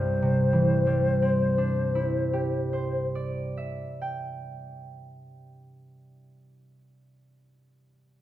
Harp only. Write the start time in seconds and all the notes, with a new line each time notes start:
Already playing: C2 G2 G4
0.22 C3
0.53 E3
0.87 G3
1.22 C4
1.58 D4
1.95 E4
2.33 G4
2.73 C5
3.15 D5
3.57 E5
4.02 G5